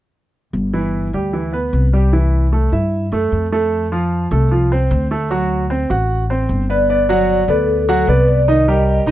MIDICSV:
0, 0, Header, 1, 4, 480
1, 0, Start_track
1, 0, Key_signature, 1, "major"
1, 0, Tempo, 396825
1, 652, Time_signature, 4, 2, 24, 8
1, 11021, End_track
2, 0, Start_track
2, 0, Title_t, "Vibraphone"
2, 0, Program_c, 0, 11
2, 8108, Note_on_c, 0, 74, 79
2, 9060, Note_on_c, 0, 69, 85
2, 9089, Note_off_c, 0, 74, 0
2, 9502, Note_off_c, 0, 69, 0
2, 9543, Note_on_c, 0, 69, 60
2, 9761, Note_off_c, 0, 69, 0
2, 9780, Note_on_c, 0, 71, 71
2, 10018, Note_on_c, 0, 74, 78
2, 10022, Note_off_c, 0, 71, 0
2, 10254, Note_on_c, 0, 75, 85
2, 10261, Note_off_c, 0, 74, 0
2, 11021, Note_off_c, 0, 75, 0
2, 11021, End_track
3, 0, Start_track
3, 0, Title_t, "Grand piano"
3, 0, Program_c, 1, 0
3, 888, Note_on_c, 1, 52, 72
3, 889, Note_on_c, 1, 64, 65
3, 1285, Note_off_c, 1, 52, 0
3, 1285, Note_off_c, 1, 64, 0
3, 1379, Note_on_c, 1, 55, 50
3, 1382, Note_on_c, 1, 67, 62
3, 1575, Note_off_c, 1, 55, 0
3, 1576, Note_off_c, 1, 67, 0
3, 1608, Note_on_c, 1, 52, 64
3, 1613, Note_on_c, 1, 64, 64
3, 1808, Note_off_c, 1, 52, 0
3, 1811, Note_off_c, 1, 64, 0
3, 1846, Note_on_c, 1, 59, 55
3, 1856, Note_on_c, 1, 71, 66
3, 2245, Note_off_c, 1, 59, 0
3, 2251, Note_off_c, 1, 71, 0
3, 2338, Note_on_c, 1, 55, 68
3, 2344, Note_on_c, 1, 67, 65
3, 2535, Note_off_c, 1, 55, 0
3, 2538, Note_off_c, 1, 67, 0
3, 2574, Note_on_c, 1, 52, 71
3, 2575, Note_on_c, 1, 64, 66
3, 2970, Note_off_c, 1, 52, 0
3, 2971, Note_off_c, 1, 64, 0
3, 3054, Note_on_c, 1, 57, 59
3, 3056, Note_on_c, 1, 69, 58
3, 3253, Note_off_c, 1, 57, 0
3, 3254, Note_off_c, 1, 69, 0
3, 3294, Note_on_c, 1, 64, 52
3, 3301, Note_on_c, 1, 76, 59
3, 3690, Note_off_c, 1, 64, 0
3, 3694, Note_off_c, 1, 76, 0
3, 3780, Note_on_c, 1, 57, 69
3, 3787, Note_on_c, 1, 69, 57
3, 4174, Note_off_c, 1, 57, 0
3, 4178, Note_off_c, 1, 69, 0
3, 4262, Note_on_c, 1, 57, 72
3, 4264, Note_on_c, 1, 69, 67
3, 4655, Note_off_c, 1, 57, 0
3, 4656, Note_off_c, 1, 69, 0
3, 4741, Note_on_c, 1, 53, 77
3, 4748, Note_on_c, 1, 65, 77
3, 5134, Note_off_c, 1, 53, 0
3, 5139, Note_off_c, 1, 65, 0
3, 5219, Note_on_c, 1, 57, 58
3, 5219, Note_on_c, 1, 69, 66
3, 5416, Note_off_c, 1, 57, 0
3, 5416, Note_off_c, 1, 69, 0
3, 5458, Note_on_c, 1, 53, 68
3, 5464, Note_on_c, 1, 65, 69
3, 5656, Note_off_c, 1, 53, 0
3, 5659, Note_off_c, 1, 65, 0
3, 5708, Note_on_c, 1, 60, 66
3, 5711, Note_on_c, 1, 72, 67
3, 6098, Note_off_c, 1, 60, 0
3, 6100, Note_off_c, 1, 72, 0
3, 6182, Note_on_c, 1, 57, 68
3, 6187, Note_on_c, 1, 69, 70
3, 6378, Note_off_c, 1, 57, 0
3, 6381, Note_off_c, 1, 69, 0
3, 6416, Note_on_c, 1, 54, 71
3, 6422, Note_on_c, 1, 66, 69
3, 6811, Note_off_c, 1, 54, 0
3, 6814, Note_off_c, 1, 66, 0
3, 6895, Note_on_c, 1, 72, 61
3, 6896, Note_on_c, 1, 60, 63
3, 7093, Note_off_c, 1, 72, 0
3, 7094, Note_off_c, 1, 60, 0
3, 7136, Note_on_c, 1, 66, 63
3, 7144, Note_on_c, 1, 78, 60
3, 7530, Note_off_c, 1, 66, 0
3, 7535, Note_off_c, 1, 78, 0
3, 7621, Note_on_c, 1, 60, 67
3, 7625, Note_on_c, 1, 72, 63
3, 8012, Note_off_c, 1, 60, 0
3, 8015, Note_off_c, 1, 72, 0
3, 8099, Note_on_c, 1, 59, 67
3, 8104, Note_on_c, 1, 71, 74
3, 8294, Note_off_c, 1, 59, 0
3, 8297, Note_off_c, 1, 71, 0
3, 8336, Note_on_c, 1, 59, 65
3, 8341, Note_on_c, 1, 71, 67
3, 8343, Note_on_c, 1, 74, 64
3, 8533, Note_off_c, 1, 59, 0
3, 8535, Note_off_c, 1, 71, 0
3, 8537, Note_off_c, 1, 74, 0
3, 8577, Note_on_c, 1, 54, 86
3, 8581, Note_on_c, 1, 66, 77
3, 8589, Note_on_c, 1, 78, 74
3, 8969, Note_off_c, 1, 54, 0
3, 8972, Note_off_c, 1, 66, 0
3, 8976, Note_off_c, 1, 78, 0
3, 9054, Note_on_c, 1, 59, 65
3, 9063, Note_on_c, 1, 71, 67
3, 9065, Note_on_c, 1, 74, 63
3, 9447, Note_off_c, 1, 59, 0
3, 9452, Note_off_c, 1, 71, 0
3, 9453, Note_off_c, 1, 74, 0
3, 9539, Note_on_c, 1, 54, 79
3, 9540, Note_on_c, 1, 66, 80
3, 9548, Note_on_c, 1, 78, 78
3, 9733, Note_off_c, 1, 54, 0
3, 9733, Note_off_c, 1, 66, 0
3, 9738, Note_off_c, 1, 78, 0
3, 9775, Note_on_c, 1, 59, 69
3, 9776, Note_on_c, 1, 71, 67
3, 9783, Note_on_c, 1, 74, 67
3, 10166, Note_off_c, 1, 59, 0
3, 10167, Note_off_c, 1, 71, 0
3, 10171, Note_off_c, 1, 74, 0
3, 10258, Note_on_c, 1, 51, 68
3, 10258, Note_on_c, 1, 63, 77
3, 10267, Note_on_c, 1, 75, 75
3, 10451, Note_off_c, 1, 51, 0
3, 10451, Note_off_c, 1, 63, 0
3, 10457, Note_off_c, 1, 75, 0
3, 10500, Note_on_c, 1, 55, 73
3, 10500, Note_on_c, 1, 67, 79
3, 10503, Note_on_c, 1, 70, 72
3, 10888, Note_off_c, 1, 55, 0
3, 10888, Note_off_c, 1, 67, 0
3, 10890, Note_off_c, 1, 70, 0
3, 10970, Note_on_c, 1, 51, 69
3, 10974, Note_on_c, 1, 63, 81
3, 10981, Note_on_c, 1, 75, 79
3, 11021, Note_off_c, 1, 51, 0
3, 11021, Note_off_c, 1, 63, 0
3, 11021, Note_off_c, 1, 75, 0
3, 11021, End_track
4, 0, Start_track
4, 0, Title_t, "Upright bass"
4, 0, Program_c, 2, 32
4, 645, Note_on_c, 2, 31, 73
4, 1322, Note_off_c, 2, 31, 0
4, 1368, Note_on_c, 2, 38, 61
4, 2045, Note_off_c, 2, 38, 0
4, 2091, Note_on_c, 2, 36, 75
4, 3224, Note_off_c, 2, 36, 0
4, 3293, Note_on_c, 2, 43, 70
4, 3743, Note_off_c, 2, 43, 0
4, 3770, Note_on_c, 2, 42, 62
4, 3998, Note_off_c, 2, 42, 0
4, 4013, Note_on_c, 2, 41, 68
4, 5145, Note_off_c, 2, 41, 0
4, 5213, Note_on_c, 2, 36, 76
4, 5888, Note_off_c, 2, 36, 0
4, 5937, Note_on_c, 2, 38, 87
4, 7065, Note_off_c, 2, 38, 0
4, 7138, Note_on_c, 2, 33, 75
4, 7809, Note_off_c, 2, 33, 0
4, 7851, Note_on_c, 2, 31, 79
4, 8979, Note_off_c, 2, 31, 0
4, 9047, Note_on_c, 2, 38, 80
4, 9720, Note_off_c, 2, 38, 0
4, 9765, Note_on_c, 2, 36, 78
4, 10893, Note_off_c, 2, 36, 0
4, 10961, Note_on_c, 2, 35, 77
4, 11021, Note_off_c, 2, 35, 0
4, 11021, End_track
0, 0, End_of_file